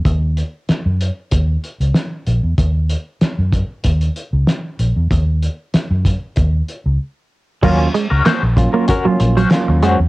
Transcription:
<<
  \new Staff \with { instrumentName = "Clean electric guitar" } { \time 4/4 \key ees \dorian \tempo 4 = 95 r1 | r1 | r1 | <des' ges' bes'>16 r8 <des' ges' bes'>16 <des' ges' c''>16 r8 <des' ges' bes'>16 <des' ges' bes'>16 r8 <des' ges' c''>16 r8 <des' ges' c''>16 r16 | }
  \new Staff \with { instrumentName = "Tine electric piano" } { \time 4/4 \key ees \dorian r1 | r1 | r1 | <ges bes des' f'>16 r16 f'16 r8. <ges bes des' f'>16 <ges bes des' f'>16 des'16 <ges bes des' f'>8 r16 <ges bes des' f'>8. r16 | }
  \new Staff \with { instrumentName = "Clean electric guitar" } { \clef bass \time 4/4 \key ees \dorian r1 | r1 | r1 | ges16 r16 aes16 r16 bes16 r8 bes16 r16 ges16 r16 ges16 r8 aes16 r16 | }
  \new Staff \with { instrumentName = "Fingered electric bass" } { \clef bass \time 4/4 \key ees \dorian ees,8. r8 ges,8 r16 ees,8 r16 des,16 r8 bes,,16 fes,16 | ees,8. r8 ges,8 r16 ees,8 r16 des,16 r8 bes,,16 fes,16 | ees,8. r8 ges,8 r16 ees,8 r16 des,16 r4 | ees,8 r16 des,16 r16 bes,,8 r8. bes,,8 r16 ees,16 f,16 fes,16 | }
  \new DrumStaff \with { instrumentName = "Drums" } \drummode { \time 4/4 <hh bd>8 hh8 <hh sn>8 hh8 <hh bd>8 hh16 hh16 <hh sn>8 hh8 | <hh bd>8 hh8 <hh sn>8 <hh bd>8 <hh bd>16 hh16 hh8 <hh sn>8 hh8 | <hh bd>8 hh8 <hh sn>8 <hh bd>8 <hh bd>8 hh8 r4 | <cymc bd>8 hh8 <hc hh sn>8 <hh bd>8 <hh bd>8 hh16 hh16 <hc hh sn>8 hh8 | }
>>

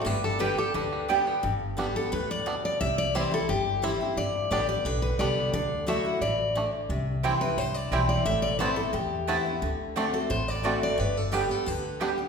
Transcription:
<<
  \new Staff \with { instrumentName = "Steel-string acoustic guitar" } { \time 4/4 \key g \major \tempo 4 = 176 b'8 a'8 b'8 a'8 b'4 r4 | r4. a'8 b'8 d''4 d''8 | e''8 d''8 c''8 a'8 g'4 e''4 | d''4 d''8 d''8 b'8 b'8 d''4 |
d''4 e''4 d''4. r8 | r4. b'8 c''8 d''4 d''8 | e''8 d''8 c''8 a'8 g'4. r8 | r4. a'8 c''8 d''4 d''8 |
b'8 a'8 b'8 a'8 b'4 r4 | }
  \new Staff \with { instrumentName = "Mandolin" } { \time 4/4 \key g \major r4 <b g' d'' g''>16 r4. r16 <b g' d'' g''>16 r8. | r1 | r1 | r1 |
r1 | r4 <c' e' c'' g''>16 r4. r16 <c' e' c'' g''>16 r8. | r4 <b e' c'' a''>16 r4. r16 <b e' c'' a''>16 r8. | r4 <c' fis' d'' a''>16 r4. r16 <c' fis' d'' a''>16 r8. |
r4 <b g' d'' g''>16 r4. r16 <b g' d'' g''>16 r8. | }
  \new Staff \with { instrumentName = "Five-string banjo" } { \time 4/4 \key g \major g8 d'8 g8 g'8 d'8 g8 b8 g8 | r4 <g b d'>8 r4. <g b d'>8 r8 | r4 <g c' e'>8 r4. <g c' e'>8 r8 | r4 <g b d'>8 r4. <g b d'>8 r8 |
r4 <a d'>8 r4. <a d'>8 r8 | r4 <g c' e'>8 r4. <g c' e'>8 r8 | r4 <a b e'>8 r4. <a b e'>8 r8 | r4 <a c' d'>8 r4. <a c' d'>8 r8 |
r4 <g b d'>8 r4. <g b d'>8 r8 | }
  \new Staff \with { instrumentName = "Steel-string acoustic guitar" } { \time 4/4 \key g \major << { r4 <d g b g'>8 <b g'>8 r4 <d g b g'>8 <b g'>8 | r4 <d g b g'>8 <b g'>8 r2 | r4 <e g c' e'>8 <c' e'>8 r4 <e g c' e'>8 <c' e'>8 | r4 <d g b g'>8 <b g'>8 r4 <d g b g'>4 |
r4 <fis a e' fis'>8 <e' fis'>8 r2 | r4 <e g c' e'>8 <c' e'>8 r4 <e g c' e'>4 | r4 <e b c' e'>8 <b e'>8 r4 <e b c' e'>8 <b e'>8 | r4 <d a c' fis'>8 <c' fis'>8 r4 <d a c' fis'>4 |
r4 <d g b g'>8 <b g'>8 r4 <d g b g'>8 <b g'>8 | } \\ { g,2 d2 | g,2 a,4 b,4 | c2 g,2 | g,2 d2 |
d2 e4 d4 | c2 g,2 | a,2 e,2 | d2 a,2 |
g,2 d2 | } >> }
  \new Staff \with { instrumentName = "Upright bass" } { \clef bass \time 4/4 \key g \major g,,2 d,2 | g,,2 d,2 | c,2 g,,2 | g,,4 a,,4 b,,4 c,4 |
d,2 a,,2 | c,2 c,4 b,,4 | a,,2 e,2 | d,2 a,,2 |
g,,2 d,2 | }
>>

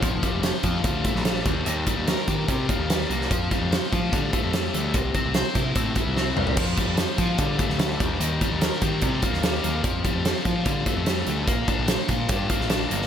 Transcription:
<<
  \new Staff \with { instrumentName = "Overdriven electric guitar" } { \time 4/4 \key f \major \tempo 4 = 147 f8 g8 c''8 f'8 g8 a8 g8 ees8 | ees8 g8 bes'8 g'8 g8 bes8 g8 bes8 | f8 g8 c''8 f'8 g8 a8 g8 a8 | c8 c'8 c''8 e'8 c'8 g8 c'8 g8 |
f8 g8 c''8 f'8 g8 a8 g8 ees8 | ees8 g8 bes'8 g'8 g8 bes8 g8 bes8 | f8 g8 c''8 f'8 g8 a8 g8 a8 | bes8 d'8 c''8 f'8 d'8 bes8 d'8 bes8 | }
  \new Staff \with { instrumentName = "Picked electric bass" } { \clef bass \time 4/4 \key f \major f,,8 r16 f,,8 r16 f,8 d,8 r16 bes,,8. ees,8 | ees,8 r16 ees,8 r16 ees8 c8 r16 ees,8. c,8 | f,8 r16 f,8 r16 f8 d8 r16 f,8. d,8 | c,8 r16 c,8 r16 c8 a,8 r16 c,8. c,8 |
f,8 r16 f,8 r16 f8 d8 r16 d,8. ees,8 | ees,8 r16 ees,8 r16 ees8 c8 r16 ees,8. ees,8 | f,8 r16 f,8 r16 f8 d8 r16 f,8. d,8 | bes,,8 r16 bes,,8 r16 bes,8 g,8 r16 bes,,8. g,,8 | }
  \new DrumStaff \with { instrumentName = "Drums" } \drummode { \time 4/4 <hh bd>8 <hh bd>8 <hh sn>8 <hh bd>8 <hh bd>8 <hh bd>16 sn16 <hh sn>8 <hh bd>8 | hh8 <hh bd>8 <hh sn>8 <hh bd>8 <hh bd>8 <hh bd>8 <hh sn>8 hh16 sn16 | <hh bd>8 <hh bd>8 <hh sn>8 <hh bd>8 <hh bd>8 <hh bd>8 <hh sn>8 hh8 | <hh bd>8 <hh bd>8 <hh sn>8 <hh bd>8 <hh bd>8 <hh bd>8 sn8 toml16 tomfh16 |
<cymc bd>8 <hh bd>8 <hh sn>8 <hh bd>8 <hh bd>8 <hh bd>16 sn16 <hh sn>8 <hh bd>8 | hh8 <hh bd>8 <hh sn>8 <hh bd>8 <hh bd>8 <hh bd>16 sn16 <hh sn>8 hh8 | <hh bd>8 <hh bd>8 <hh sn>8 <hh bd>8 <hh bd>8 <hh bd>8 <hh sn>8 hh8 | <hh bd>8 <hh bd>8 <hh sn>8 <hh bd>8 <hh bd>8 <hh bd>16 sn16 <hh sn>8 hh16 sn16 | }
>>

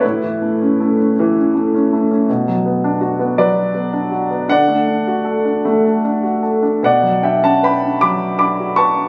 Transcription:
\new Staff \with { instrumentName = "Upright piano" } { \time 6/8 \key b \minor \tempo 4. = 53 << { <e' b'>4. r4. | r4. <b' d''>4. | <d'' fis''>2 r4 | <d'' fis''>8 <e'' g''>16 <fis'' a''>16 <g'' b''>8 <b'' d'''>8 <b'' d'''>8 <a'' cis'''>8 | } \\ { a,16 e16 a16 cis'16 a16 cis'16 e16 cis'16 a16 cis'16 a16 cis'16 | b,16 fis16 b16 d'16 fis'16 b16 fis16 fis'16 b16 d'16 fis'16 b16 | d16 a16 d'16 fis'16 a'16 d'16 a16 a'16 d'16 fis'16 a'16 d'16 | b,16 fis16 d'16 cis'16 b'16 d'16 fis8 d'16 fis'16 b'16 d'16 | } >> }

